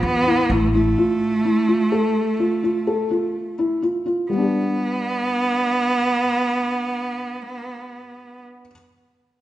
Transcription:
0, 0, Header, 1, 4, 480
1, 0, Start_track
1, 0, Tempo, 473560
1, 984, Time_signature, 7, 2, 24, 8
1, 3387, Tempo, 480384
1, 9451, End_track
2, 0, Start_track
2, 0, Title_t, "Felt piano"
2, 0, Program_c, 0, 0
2, 0, Note_on_c, 0, 65, 73
2, 216, Note_off_c, 0, 65, 0
2, 270, Note_on_c, 0, 64, 71
2, 479, Note_off_c, 0, 64, 0
2, 517, Note_on_c, 0, 64, 67
2, 723, Note_off_c, 0, 64, 0
2, 753, Note_on_c, 0, 64, 66
2, 960, Note_off_c, 0, 64, 0
2, 991, Note_on_c, 0, 65, 73
2, 1410, Note_off_c, 0, 65, 0
2, 1468, Note_on_c, 0, 64, 67
2, 1677, Note_off_c, 0, 64, 0
2, 1702, Note_on_c, 0, 65, 62
2, 1914, Note_off_c, 0, 65, 0
2, 1945, Note_on_c, 0, 69, 68
2, 2368, Note_off_c, 0, 69, 0
2, 2425, Note_on_c, 0, 65, 69
2, 2636, Note_off_c, 0, 65, 0
2, 2668, Note_on_c, 0, 65, 68
2, 2878, Note_off_c, 0, 65, 0
2, 2912, Note_on_c, 0, 69, 59
2, 3122, Note_off_c, 0, 69, 0
2, 3148, Note_on_c, 0, 65, 66
2, 3571, Note_off_c, 0, 65, 0
2, 3631, Note_on_c, 0, 64, 70
2, 3839, Note_off_c, 0, 64, 0
2, 3868, Note_on_c, 0, 65, 63
2, 4078, Note_off_c, 0, 65, 0
2, 4102, Note_on_c, 0, 65, 66
2, 4315, Note_off_c, 0, 65, 0
2, 4340, Note_on_c, 0, 55, 54
2, 4381, Note_on_c, 0, 59, 60
2, 4422, Note_on_c, 0, 62, 55
2, 4463, Note_on_c, 0, 67, 60
2, 8649, Note_off_c, 0, 55, 0
2, 8691, Note_off_c, 0, 59, 0
2, 8732, Note_off_c, 0, 62, 0
2, 8772, Note_off_c, 0, 67, 0
2, 9451, End_track
3, 0, Start_track
3, 0, Title_t, "Cello"
3, 0, Program_c, 1, 42
3, 40, Note_on_c, 1, 59, 94
3, 509, Note_on_c, 1, 57, 86
3, 524, Note_off_c, 1, 59, 0
3, 734, Note_off_c, 1, 57, 0
3, 740, Note_on_c, 1, 57, 96
3, 3823, Note_off_c, 1, 57, 0
3, 4339, Note_on_c, 1, 59, 92
3, 8462, Note_off_c, 1, 59, 0
3, 9451, End_track
4, 0, Start_track
4, 0, Title_t, "Upright bass"
4, 0, Program_c, 2, 32
4, 27, Note_on_c, 2, 40, 82
4, 247, Note_off_c, 2, 40, 0
4, 503, Note_on_c, 2, 33, 83
4, 943, Note_off_c, 2, 33, 0
4, 9451, End_track
0, 0, End_of_file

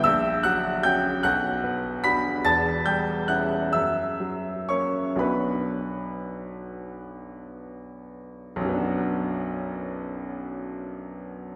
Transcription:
0, 0, Header, 1, 2, 480
1, 0, Start_track
1, 0, Key_signature, 2, "minor"
1, 0, Tempo, 803213
1, 23, Time_signature, 6, 3, 24, 8
1, 1464, Tempo, 852273
1, 1944, Tempo, 910470
1, 2424, Tempo, 1011804
1, 2904, Tempo, 1086957
1, 3384, Tempo, 1125704
1, 4344, Tempo, 1013514
1, 5763, End_track
2, 0, Start_track
2, 0, Title_t, "Upright piano"
2, 0, Program_c, 0, 0
2, 0, Control_c, 0, 64, 127
2, 22, Note_on_c, 0, 88, 112
2, 28, Note_on_c, 0, 34, 79
2, 31, Note_on_c, 0, 76, 82
2, 33, Control_c, 0, 64, 0
2, 128, Control_c, 0, 64, 127
2, 246, Note_off_c, 0, 76, 0
2, 258, Note_off_c, 0, 88, 0
2, 260, Note_on_c, 0, 90, 109
2, 267, Note_on_c, 0, 78, 84
2, 268, Note_on_c, 0, 54, 62
2, 484, Note_off_c, 0, 78, 0
2, 497, Note_off_c, 0, 90, 0
2, 499, Note_on_c, 0, 91, 104
2, 506, Note_on_c, 0, 61, 56
2, 509, Note_on_c, 0, 79, 78
2, 511, Note_on_c, 0, 66, 61
2, 644, Note_off_c, 0, 54, 0
2, 716, Note_off_c, 0, 34, 0
2, 716, Note_off_c, 0, 61, 0
2, 719, Note_off_c, 0, 66, 0
2, 724, Note_off_c, 0, 79, 0
2, 735, Note_off_c, 0, 91, 0
2, 737, Note_on_c, 0, 90, 104
2, 742, Note_on_c, 0, 35, 72
2, 742, Note_on_c, 0, 78, 78
2, 743, Control_c, 0, 64, 0
2, 831, Control_c, 0, 64, 127
2, 980, Note_on_c, 0, 59, 60
2, 1198, Note_off_c, 0, 78, 0
2, 1217, Note_on_c, 0, 95, 115
2, 1219, Note_off_c, 0, 90, 0
2, 1221, Note_on_c, 0, 83, 93
2, 1224, Note_on_c, 0, 62, 57
2, 1224, Note_on_c, 0, 66, 69
2, 1367, Note_off_c, 0, 59, 0
2, 1442, Note_off_c, 0, 66, 0
2, 1443, Note_off_c, 0, 62, 0
2, 1446, Note_off_c, 0, 35, 0
2, 1448, Note_off_c, 0, 83, 0
2, 1459, Note_on_c, 0, 28, 73
2, 1462, Note_on_c, 0, 93, 109
2, 1463, Note_off_c, 0, 95, 0
2, 1464, Note_on_c, 0, 40, 73
2, 1467, Note_on_c, 0, 81, 92
2, 1473, Control_c, 0, 64, 0
2, 1578, Control_c, 0, 64, 127
2, 1685, Note_off_c, 0, 81, 0
2, 1693, Note_on_c, 0, 91, 86
2, 1698, Note_on_c, 0, 55, 54
2, 1699, Note_off_c, 0, 93, 0
2, 1699, Note_on_c, 0, 79, 61
2, 1926, Note_off_c, 0, 79, 0
2, 1931, Note_on_c, 0, 90, 87
2, 1935, Note_on_c, 0, 78, 68
2, 1936, Note_on_c, 0, 64, 53
2, 1939, Note_on_c, 0, 61, 51
2, 1940, Note_off_c, 0, 91, 0
2, 2083, Note_off_c, 0, 55, 0
2, 2155, Note_off_c, 0, 64, 0
2, 2156, Note_off_c, 0, 28, 0
2, 2156, Note_off_c, 0, 61, 0
2, 2158, Note_off_c, 0, 78, 0
2, 2159, Note_off_c, 0, 40, 0
2, 2168, Note_on_c, 0, 88, 90
2, 2174, Note_off_c, 0, 90, 0
2, 2175, Note_on_c, 0, 76, 67
2, 2176, Note_on_c, 0, 42, 60
2, 2189, Control_c, 0, 64, 0
2, 2271, Control_c, 0, 64, 127
2, 2418, Note_on_c, 0, 54, 49
2, 2635, Note_off_c, 0, 76, 0
2, 2649, Note_on_c, 0, 85, 89
2, 2651, Note_off_c, 0, 88, 0
2, 2654, Note_on_c, 0, 61, 54
2, 2655, Note_on_c, 0, 58, 50
2, 2655, Note_on_c, 0, 73, 62
2, 2800, Note_off_c, 0, 54, 0
2, 2872, Note_on_c, 0, 35, 56
2, 2878, Note_on_c, 0, 54, 44
2, 2883, Note_off_c, 0, 42, 0
2, 2883, Note_off_c, 0, 61, 0
2, 2883, Note_on_c, 0, 59, 44
2, 2884, Note_off_c, 0, 58, 0
2, 2885, Note_off_c, 0, 73, 0
2, 2888, Note_on_c, 0, 83, 74
2, 2892, Note_on_c, 0, 62, 45
2, 2895, Note_on_c, 0, 71, 58
2, 2900, Note_off_c, 0, 85, 0
2, 2914, Control_c, 0, 64, 0
2, 2992, Control_c, 0, 64, 127
2, 3601, Note_off_c, 0, 71, 0
2, 3615, Note_off_c, 0, 83, 0
2, 4312, Note_off_c, 0, 35, 0
2, 4315, Note_off_c, 0, 54, 0
2, 4317, Note_off_c, 0, 59, 0
2, 4321, Note_off_c, 0, 62, 0
2, 4344, Note_on_c, 0, 35, 72
2, 4354, Control_c, 0, 64, 0
2, 4363, Note_on_c, 0, 42, 60
2, 4383, Note_on_c, 0, 54, 55
2, 4403, Note_on_c, 0, 59, 59
2, 4423, Note_on_c, 0, 62, 61
2, 4440, Control_c, 0, 64, 127
2, 4444, Note_on_c, 0, 66, 62
2, 5763, Note_off_c, 0, 35, 0
2, 5763, Note_off_c, 0, 42, 0
2, 5763, Note_off_c, 0, 54, 0
2, 5763, Note_off_c, 0, 59, 0
2, 5763, Note_off_c, 0, 62, 0
2, 5763, Note_off_c, 0, 66, 0
2, 5763, End_track
0, 0, End_of_file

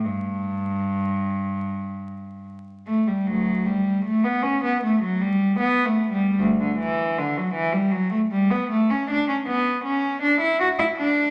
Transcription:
0, 0, Header, 1, 2, 480
1, 0, Start_track
1, 0, Tempo, 807537
1, 27, Time_signature, 4, 2, 24, 8
1, 1947, Tempo, 782269
1, 3867, Tempo, 767263
1, 5787, Tempo, 749064
1, 6960, End_track
2, 0, Start_track
2, 0, Title_t, "Cello"
2, 0, Program_c, 0, 42
2, 30, Note_on_c, 0, 43, 60
2, 1468, Note_off_c, 0, 43, 0
2, 1706, Note_on_c, 0, 57, 67
2, 1819, Note_off_c, 0, 57, 0
2, 1827, Note_on_c, 0, 55, 55
2, 1939, Note_on_c, 0, 38, 49
2, 1941, Note_on_c, 0, 54, 68
2, 1945, Note_off_c, 0, 55, 0
2, 2166, Note_off_c, 0, 38, 0
2, 2180, Note_on_c, 0, 55, 65
2, 2184, Note_off_c, 0, 54, 0
2, 2423, Note_on_c, 0, 57, 72
2, 2424, Note_off_c, 0, 55, 0
2, 2538, Note_on_c, 0, 59, 67
2, 2543, Note_off_c, 0, 57, 0
2, 2653, Note_on_c, 0, 61, 70
2, 2663, Note_off_c, 0, 59, 0
2, 2780, Note_off_c, 0, 61, 0
2, 2786, Note_on_c, 0, 59, 65
2, 2902, Note_on_c, 0, 57, 74
2, 2903, Note_off_c, 0, 59, 0
2, 3018, Note_on_c, 0, 54, 65
2, 3019, Note_off_c, 0, 57, 0
2, 3136, Note_off_c, 0, 54, 0
2, 3138, Note_on_c, 0, 55, 73
2, 3367, Note_on_c, 0, 59, 84
2, 3375, Note_off_c, 0, 55, 0
2, 3529, Note_off_c, 0, 59, 0
2, 3530, Note_on_c, 0, 57, 70
2, 3689, Note_on_c, 0, 55, 71
2, 3697, Note_off_c, 0, 57, 0
2, 3856, Note_off_c, 0, 55, 0
2, 3856, Note_on_c, 0, 38, 73
2, 3983, Note_off_c, 0, 38, 0
2, 3984, Note_on_c, 0, 50, 55
2, 4105, Note_off_c, 0, 50, 0
2, 4108, Note_on_c, 0, 52, 69
2, 4341, Note_off_c, 0, 52, 0
2, 4353, Note_on_c, 0, 50, 72
2, 4469, Note_off_c, 0, 50, 0
2, 4472, Note_on_c, 0, 54, 70
2, 4578, Note_on_c, 0, 52, 77
2, 4589, Note_off_c, 0, 54, 0
2, 4697, Note_on_c, 0, 55, 67
2, 4700, Note_off_c, 0, 52, 0
2, 4812, Note_on_c, 0, 54, 74
2, 4822, Note_off_c, 0, 55, 0
2, 4935, Note_on_c, 0, 57, 65
2, 4939, Note_off_c, 0, 54, 0
2, 4985, Note_off_c, 0, 57, 0
2, 5063, Note_on_c, 0, 55, 78
2, 5179, Note_on_c, 0, 59, 77
2, 5182, Note_off_c, 0, 55, 0
2, 5303, Note_off_c, 0, 59, 0
2, 5305, Note_on_c, 0, 57, 80
2, 5423, Note_off_c, 0, 57, 0
2, 5429, Note_on_c, 0, 61, 70
2, 5548, Note_off_c, 0, 61, 0
2, 5556, Note_on_c, 0, 62, 79
2, 5666, Note_on_c, 0, 61, 74
2, 5669, Note_off_c, 0, 62, 0
2, 5714, Note_off_c, 0, 61, 0
2, 5783, Note_on_c, 0, 59, 75
2, 6023, Note_off_c, 0, 59, 0
2, 6025, Note_on_c, 0, 61, 72
2, 6264, Note_off_c, 0, 61, 0
2, 6267, Note_on_c, 0, 62, 80
2, 6386, Note_off_c, 0, 62, 0
2, 6387, Note_on_c, 0, 64, 72
2, 6505, Note_off_c, 0, 64, 0
2, 6510, Note_on_c, 0, 66, 85
2, 6557, Note_off_c, 0, 66, 0
2, 6629, Note_on_c, 0, 64, 71
2, 6676, Note_off_c, 0, 64, 0
2, 6746, Note_on_c, 0, 62, 81
2, 6960, Note_off_c, 0, 62, 0
2, 6960, End_track
0, 0, End_of_file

